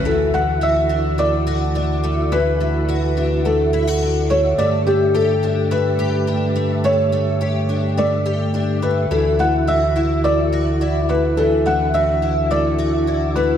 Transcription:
<<
  \new Staff \with { instrumentName = "Felt piano" } { \time 4/4 \key d \major \tempo 4 = 106 a'8 fis''8 e''4 d''2 | b'2 a'4. cis''8 | d''8 g'8 a'4 b'2 | cis''2 d''4. b'8 |
a'8 fis''8 e''4 d''4. b'8 | a'8 fis''8 e''4 d''4. b'8 | }
  \new Staff \with { instrumentName = "Tonewheel organ" } { \time 4/4 \key d \major e'1~ | e'1 | a1~ | a1 |
e'1 | d'1 | }
  \new Staff \with { instrumentName = "Tonewheel organ" } { \clef bass \time 4/4 \key d \major << { <d, fis'>1~ | <d, fis'>1 | <g, g'>1~ | <g, g'>1 |
<d, fis'>1~ | <d, fis'>1 | } \\ { d1~ | d1~ | d1~ | d1~ |
d1~ | d1 | } >> }
  \new Staff \with { instrumentName = "Twelve-string acoustic guitar" } { \time 4/4 \key d \major e8 a8 fis'8 d'8 a8 fis'8 d'8 a8 | e8 a8 fis'8 d'8 a8 e'16 fis'16 d'8 a8 | a8 a8 g'8 d'8 a8 g'8 d'8 a8 | a8 a8 g'8 d'8 a8 g'8 d'8 a8 |
e8 a8 fis'8 e'8 a8 fis'8 e'8 a8 | e8 a8 fis'8 e'8 a8 fis'8 e'8 a8 | }
>>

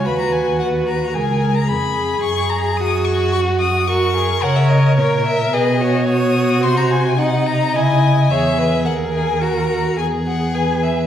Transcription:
<<
  \new Staff \with { instrumentName = "Violin" } { \time 4/4 \key fis \major \tempo 4 = 109 b''16 ais''16 gis''8 fis''8 ais''8 gis''8. ais''16 b''4 | cis'''8 ais''8 dis'''8 cis'''8 cis'''8 dis'''8 cis'''4 | \key b \major fis''16 e''16 dis''8 cis''8 e''8 dis''4 dis'''4 | c'''16 bes''16 gis''8 ges''8 bes''8 gis''4 e''4 |
fis''8 gis''8 ais''4 gis''8 fis''8 gis''8 e''8 | }
  \new Staff \with { instrumentName = "Viola" } { \time 4/4 \key fis \major b'4 b'4 ais'4 gis'4~ | gis'2 fis'4 ais'4 | \key b \major cis''4 ais'4 b'8 cis''4. | c''4 ees''2 cis''8 b'8 |
ais'2 gis'4 b'4 | }
  \new Staff \with { instrumentName = "Violin" } { \time 4/4 \key fis \major fis'2 gis'4 gis'4~ | gis'4 fis'2 fis'8 gis'8 | \key b \major ais'4 ais'4 gis'8 fis'8 fis'4~ | fis'4 ees'4 e'4 gis'8 gis'8~ |
gis'4 fis'8 fis'8 gis'2 | }
  \new Staff \with { instrumentName = "Cello" } { \clef bass \time 4/4 \key fis \major dis,2 cis,4 eis,4 | fis,1 | \key b \major cis4 ais,4 b,2 | c2 cis4 e,4 |
dis,2 e,2 | }
>>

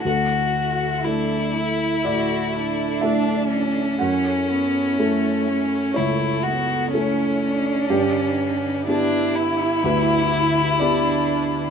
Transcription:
<<
  \new Staff \with { instrumentName = "String section" } { \time 4/4 \key d \major \tempo 4 = 62 <e' a' e''>1 | <e' a' cis''>1 | <d g' b'>1 | }
  \new Staff \with { instrumentName = "Felt piano" } { \time 4/4 \key d \major << { a'2 d''4 e''4 | fis''2 cis''4 r4 | g'2 b'4 d''4 | } \\ { d,4 <a e' a'>4 a,4 <a e' a'>4 | fis,4 <a e' a'>4 cis,4 <a e' a'>4 | g,4 <b d' g'>4 d,4 <b d' g'>4 | } >> }
  \new Staff \with { instrumentName = "Violin" } { \time 4/4 \key d \major fis'4 e'2 d'8 cis'8~ | cis'2 e'8 fis'8 cis'4~ | cis'4 d'8 e'2~ e'8 | }
  \new Staff \with { instrumentName = "Cello" } { \time 4/4 \key d \major fis'4 d'8 e'8 fis'8 d'4. | cis'8 b8 a8 cis'8 a8 b8 cis'8 d'8~ | d'4 e'2 d'4 | }
>>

